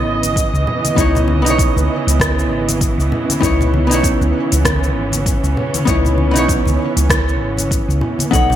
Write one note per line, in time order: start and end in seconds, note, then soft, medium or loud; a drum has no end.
0.00 8.29 C#3 medium
0.00 8.28 E3 medium
0.00 0.92 B3 medium
0.00 8.56 B3 medium
0.00 0.94 D#4 medium
0.00 0.95 E4 medium
0.00 0.96 C#5 loud
0.00 3.39 D#5 medium
0.05 0.47 G#1 loud
0.23 closed hi-hat medium
0.23 high conga medium
0.23 cabasa medium
0.36 kick loud
0.36 closed hi-hat soft
0.36 cabasa medium
0.53 0.64 C#2 medium
0.53 cabasa soft
0.67 low conga medium
0.84 closed hi-hat medium
0.84 high conga medium
0.84 cabasa medium
0.96 1.46 C#2 medium
0.96 1.41 B3 medium
0.96 1.41 D#4 medium
0.96 1.42 E4 medium
0.96 kick loud
0.96 closed hi-hat soft
0.96 cabasa medium
1.00 1.43 C#5 medium
1.15 low conga medium
1.15 cabasa soft
1.28 high conga loud
1.42 1.68 B1 medium
1.42 3.37 B3 medium
1.42 3.39 D#4 medium
1.46 3.40 E4 medium
1.46 3.41 C#5 loud
1.46 closed hi-hat medium
1.46 cabasa medium
1.59 kick loud
1.59 closed hi-hat soft
1.59 cabasa medium
1.76 1.86 C#2 medium
1.76 high conga medium
1.76 cabasa soft
2.07 2.50 C#2 medium
2.07 closed hi-hat medium
2.07 cabasa medium
2.20 kick loud
2.20 cross-stick medium
2.20 closed hi-hat soft
2.20 high conga medium
2.20 cabasa medium
2.39 cabasa soft
2.50 2.92 G#1 medium
2.69 closed hi-hat medium
2.69 high conga medium
2.69 cabasa medium
2.81 kick loud
2.81 closed hi-hat soft
2.81 cabasa medium
2.98 3.08 C#2 medium
2.98 cabasa soft
3.12 low conga medium
3.30 closed hi-hat medium
3.30 high conga medium
3.30 cabasa medium
3.41 3.91 C#2 loud
3.41 3.85 B3 medium
3.41 8.29 C#4 medium
3.41 3.86 D#4 medium
3.41 3.86 E4 medium
3.41 3.87 C#5 loud
3.41 kick loud
3.41 closed hi-hat soft
3.41 cabasa medium
3.61 low conga medium
3.61 cabasa soft
3.74 high conga loud
3.87 4.13 B1 medium
3.87 5.82 B3 medium
3.87 5.84 D#4 medium
3.91 5.85 E4 medium
3.91 5.86 C#5 loud
3.91 closed hi-hat medium
3.91 cabasa medium
4.04 kick loud
4.04 closed hi-hat soft
4.04 cabasa medium
4.21 4.31 C#2 medium
4.21 high conga medium
4.21 cabasa soft
4.52 4.96 C#2 loud
4.52 closed hi-hat soft
4.52 cabasa medium
4.65 kick loud
4.65 cross-stick medium
4.65 closed hi-hat soft
4.65 high conga loud
4.65 cabasa medium
4.84 cabasa soft
4.96 5.37 G#1 loud
5.12 closed hi-hat medium
5.12 high conga medium
5.12 cabasa medium
5.26 kick loud
5.26 closed hi-hat soft
5.26 cabasa medium
5.43 5.54 C#2 medium
5.43 cabasa soft
5.57 low conga medium
5.74 closed hi-hat medium
5.74 high conga loud
5.74 cabasa medium
5.85 6.36 C#2 medium
5.85 6.30 B3 medium
5.85 6.31 D#4 medium
5.85 6.31 E4 medium
5.85 6.32 C#5 medium
5.85 kick loud
5.85 closed hi-hat soft
5.85 cabasa medium
6.05 low conga medium
6.05 cabasa soft
6.18 high conga medium
6.31 8.27 B3 medium
6.31 8.28 D#4 medium
6.36 6.58 B1 medium
6.36 8.29 E4 medium
6.36 8.31 C#5 loud
6.36 closed hi-hat medium
6.36 cabasa medium
6.49 kick loud
6.49 closed hi-hat soft
6.49 cabasa medium
6.65 6.76 C#2 medium
6.65 high conga medium
6.65 cabasa soft
6.96 7.41 C#2 medium
6.96 closed hi-hat medium
6.96 cabasa medium
7.09 kick loud
7.09 cross-stick medium
7.09 closed hi-hat soft
7.09 high conga medium
7.09 cabasa medium
7.29 cabasa soft
7.41 7.82 G#1 loud
7.57 closed hi-hat medium
7.57 high conga medium
7.57 cabasa medium
7.71 kick loud
7.71 closed hi-hat soft
7.71 cabasa medium
7.88 7.99 C#2 medium
7.88 cabasa soft
8.01 low conga medium
8.19 closed hi-hat medium
8.19 high conga medium
8.19 cabasa medium
8.31 8.56 B1 medium
8.31 8.56 A3 medium
8.31 8.56 B3 medium
8.31 8.56 D#4 medium
8.31 8.56 A4 medium
8.31 8.56 F#5 medium
8.31 kick loud
8.31 closed hi-hat soft
8.31 cabasa medium
8.35 8.56 C#5 loud
8.50 low conga medium
8.50 cabasa soft